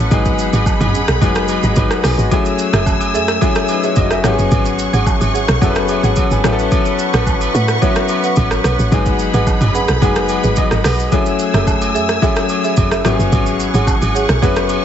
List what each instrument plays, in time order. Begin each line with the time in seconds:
Already playing: grand piano F#3 B3 C#4 E4 A4, string section F#5
0.11 log drum bass G#1, grand piano F#3 G#3 B3 D#4 G#4, string section G#4 B5, kick, high agogo, shaker
0.25 kick, shaker
0.39 shaker
0.53 log drum bass G#1, high agogo, shaker
0.66 kick, low woodblock, shaker
0.81 log drum bass G#1, mid tom, high agogo, shaker
0.95 shaker
1.08 log drum bass B1, cross-stick, shaker
1.21 log drum bass F#1, grand piano F#3 G#3 B3 D#4 G#4, kick, high agogo, shaker
1.35 cross-stick, shaker
1.48 high agogo, shaker
1.63 log drum bass G#1, grand piano F#4 D#5, shaker
1.76 log drum bass G#1, grand piano D#4 B4, kick, high agogo, shaker
1.91 cross-stick, shaker
2.04 log drum bass B1, grand piano B3 G#4, cross-stick, open hi-hat, high agogo, shaker
2.18 log drum bass G#1, grand piano F#4, shaker
2.31 grand piano F#3 A3 C#4 E4 G#4, string section A3 G#5 E6, kick, high agogo, shaker
2.45 shaker
2.59 shaker
2.73 log drum bass F#1, marimba G#4 A4 E5, cross-stick, high agogo, shaker
2.86 kick, low woodblock, shaker
3.01 high agogo, shaker
3.14 log drum bass F#2, marimba G#4 A4 E5, shaker
3.28 cross-stick, shaker
3.41 grand piano F#3 A3 C#4 E4 G#4, marimba G#4 A4 E5, kick, high agogo, shaker
3.55 cross-stick, shaker
3.68 grand piano D#4 B4, high agogo, shaker
3.83 grand piano E4 C#5, marimba G#4 A4 E5, shaker
3.96 log drum bass F#1, grand piano F#4 D#5, kick, high agogo, shaker
4.11 grand piano G#4 E5, cross-stick, shaker
4.24 log drum bass G#1, grand piano F#3 B3 C#4 E4 G4, string section G#4 F#5 C#6, marimba G#4 C#5 F#5, cross-stick, high agogo, shaker
4.32 grand piano G#4
4.39 log drum bass F#1, shaker
4.51 log drum bass G#1, kick, high agogo, shaker
4.65 shaker
4.79 shaker
4.93 log drum bass G#1, marimba G#4 C#5 F#5, high agogo, shaker
5.06 kick, low woodblock, shaker
5.21 log drum bass G#1, high agogo, shaker
5.34 marimba G#4 C#5 F#5, shaker
5.48 log drum bass B1, cross-stick, shaker
5.61 log drum bass F#1, grand piano F#3 B3 C#4 E4 A4, marimba G#4 C#5 F#5, kick, high agogo, shaker
5.70 grand piano B4
5.76 cross-stick, shaker
5.88 grand piano G#4 E5, high agogo, shaker
6.03 log drum bass G#1, marimba G#4 C#5 F#5, grand piano F#5, shaker
6.16 kick, high agogo, shaker
6.31 log drum bass G#1, grand piano B4 G#5, shaker
6.44 log drum bass A1, grand piano F#3 B3 C#4 E4 G#4, marimba B4 C#5 F#5, string section B4 C#6, cross-stick, high agogo, shaker
6.52 grand piano A4
6.59 shaker
6.72 kick, high agogo, shaker
6.85 shaker
6.99 shaker
7.13 log drum bass A1, marimba B4 C#5 F#5, cross-stick, high agogo, shaker
7.27 kick, low woodblock, shaker
7.41 high agogo, shaker
7.54 log drum bass A2, marimba B4 C#5 F#5, shaker
7.68 cross-stick, shaker
7.82 grand piano F#3 B3 C#4 E4 F#4, marimba B4 C#5 F#5, kick, high agogo, shaker
7.96 cross-stick, shaker
8.08 high agogo, shaker
8.24 marimba B4 C#5 F#5, shaker
8.36 log drum bass A1, kick, high agogo, shaker
8.51 cross-stick, shaker
8.64 log drum bass B1, marimba B4 C#5 F#5, cross-stick, high agogo, shaker
8.79 log drum bass A1, shaker
8.92 log drum bass G#1, grand piano F#3 G#3 B3 D#4 G#4, string section G#4 B5, kick, high agogo, shaker
9.06 kick, shaker
9.19 shaker
9.33 log drum bass G#1, marimba G#4 B4 F#5, high agogo, shaker
9.47 kick, low woodblock, shaker
9.61 log drum bass G#1, mid tom, high agogo, shaker
9.74 marimba G#4 B4 F#5, grand piano B5, shaker
9.88 log drum bass B1, cross-stick, shaker
10.02 log drum bass F#1, grand piano F#3 G#3 B3 D#4 G#4 G#5, marimba G#4 B4 F#5, kick, high agogo, shaker
10.16 cross-stick, shaker
10.29 grand piano F#5, high agogo, shaker
10.44 log drum bass G#1, marimba G#4 B4 F#5, shaker
10.56 grand piano D#5, kick, high agogo, shaker
10.71 log drum bass G#1, grand piano D#5, cross-stick, shaker
10.84 log drum bass B1, marimba G#4 B4 F#5, cross-stick, open hi-hat, high agogo, shaker
10.99 shaker
11.12 grand piano F#3 A3 C#4 E4 G#4, string section A3 G#5 E6, kick, high agogo, shaker
11.26 shaker
11.39 shaker
11.54 log drum bass F#1, marimba G#4 A4 E5, cross-stick, high agogo, shaker
11.67 kick, low woodblock, shaker
11.82 high agogo, shaker
11.94 log drum bass F#2, marimba G#4 A4 E5, shaker
12.09 cross-stick, shaker
12.22 grand piano F#3 A3 C#4 E4 G#4, marimba G#4 A4 E5, kick, high agogo, shaker
12.36 cross-stick, shaker
12.49 high agogo, shaker
12.64 marimba G#4 A4 E5, shaker
12.77 log drum bass F#1, kick, high agogo, shaker
12.91 marimba G#4 A4 E5, cross-stick, shaker
13.05 log drum bass G#1, grand piano F#3 B3 C#4 E4 G4, string section G#4 F#5 C#6, cross-stick, high agogo, shaker
13.13 grand piano G#4
13.19 log drum bass F#1, shaker
13.32 log drum bass G#1, kick, high agogo, shaker
13.46 shaker
13.60 shaker
13.74 log drum bass G#1, marimba G#4 C#5 F#5, high agogo, shaker
13.87 kick, low woodblock, shaker
14.02 log drum bass G#1, high agogo, shaker
14.15 marimba G#4 C#5 F#5, shaker
14.29 log drum bass B1, cross-stick, shaker
14.42 log drum bass F#1, grand piano F#3 B3 C#4 E4 B4, marimba G#4 C#5 F#5, kick, high agogo, shaker
14.56 cross-stick, shaker
14.69 high agogo, shaker